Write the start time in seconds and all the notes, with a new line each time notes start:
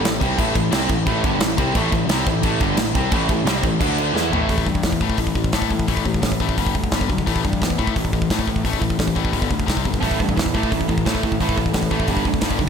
0.03 A1 A2 E3, snare, crash
0.20 C2 C3 G3 C4, kick, crash
0.37 A1 A2 E3 A3, kick, crash
0.55 A1 A2 E3, kick, crash
0.71 C2 C3 G3 C4, snare, crash
0.89 A1 A2 E3, kick, crash
1.06 A1 A2 E3 A3, kick, crash
1.24 G1 G2 D3 G3, kick, crash
1.39 A1 A2 E3, snare, crash
1.57 C2 C3 G3 C4, kick, crash
1.75 A1 A2 E3 A3, kick, crash
1.92 A1 A2 E3, kick, crash
2.07 C2 C3 G3 C4, snare, crash
2.26 A1 A2 E3, kick, crash
2.43 A1 A2 E3 A3, kick, crash
2.60 G1 G2 D3 G3, kick, crash
2.77 A1 A2 E3, snare, crash
2.95 C2 C3 G3 C4, kick, crash
3.11 A1 A2 E3 A3, kick, crash
3.29 A1 A2 E3, kick, crash
3.44 C2 C3 G3 C4, snare, crash
3.63 A1 A2 E3, kick, crash
3.80 D2 D3 A3 D4, kick, crash
3.98 crash
4.14 E2 E3 B3 E4, snare
4.31 A1 A2 E3 A3, floor tom
4.49 A1 A2 E3 A3, kick, open hi-hat
4.58 kick
4.66 G2 A2 E3, kick
4.75 kick
4.83 E2 A2 E3, kick, snare, open hi-hat
4.92 kick
5.01 A2 E3 A3, kick
5.10 kick
5.18 A1 A2 E3, kick, open hi-hat
5.27 kick
5.35 A1 A2 E3, kick
5.44 kick
5.52 A2 E3 A3, kick, snare, open hi-hat
5.62 kick
5.71 A2 E3, kick
5.79 kick
5.88 A1 A2 E3 A3, kick, open hi-hat
5.97 kick
6.05 A1 A2 E3, kick
6.14 kick
6.22 A1 A2 E3, kick, snare, open hi-hat
6.32 kick
6.40 A1 A2 E3 A3, kick
6.49 kick
6.57 G1 G2 D3 G3, kick, open hi-hat
6.67 kick
6.74 D2 G2 D3, kick
6.84 kick
6.92 G1 G2 D3 G3, kick, snare, open hi-hat
7.01 kick
7.09 B1 G2 D3, kick
7.18 kick
7.26 A1 A2 E3 A3, kick, open hi-hat
7.36 kick
7.45 G2 A2 E3, kick
7.53 kick
7.62 E2 A2 E3, kick, snare, open hi-hat
7.70 kick
7.78 A2 E3 A3, kick
7.87 kick
7.95 A1 A2 E3, kick, open hi-hat
8.05 kick
8.13 A1 A2 E3, kick
8.22 kick
8.30 A2 E3 A3, kick, snare, open hi-hat
8.39 kick
8.47 A2 E3, kick
8.56 kick
8.64 A1 A2 E3 A3, kick, open hi-hat
8.73 kick
8.81 A1 A2 E3, kick
8.90 kick
8.98 A1 A2 E3, kick, snare, open hi-hat
9.08 kick
9.15 A1 A2 E3 A3, kick
9.25 kick
9.32 G1 G2 D3 G3, kick, open hi-hat
9.42 kick
9.50 D2 G2 D3, kick
9.60 kick
9.66 C2 C3 G3 C4, kick, snare, open hi-hat
9.77 kick
9.85 G1 C3 G3, kick
9.94 kick
10.01 A1 A2 E3 A3, kick, open hi-hat
10.11 kick
10.19 G2 A2 E3, kick
10.29 kick
10.37 E2 A2 E3, kick, snare, open hi-hat
10.46 kick
10.54 A2 E3 A3, kick
10.63 kick
10.72 A1 A2 E3, kick, open hi-hat
10.81 kick
10.89 A1 A2 E3, kick
10.98 kick
11.06 A2 E3 A3, kick, snare, open hi-hat
11.15 kick
11.23 A2 E3, kick
11.32 kick
11.41 A1 A2 E3 A3, kick, open hi-hat
11.49 kick
11.57 A1 A2 E3, kick
11.66 kick
11.73 A1 A2 E3, kick, snare, open hi-hat
11.83 kick
11.90 A1 A2 E3 A3, kick
12.00 kick
12.06 G1 G2 D3 G3, kick, open hi-hat
12.17 kick
12.24 D2 G2 D3, kick
12.34 kick
12.41 G1 G2 D3 G3, kick, snare, open hi-hat
12.51 kick
12.59 B1 G2 D3, kick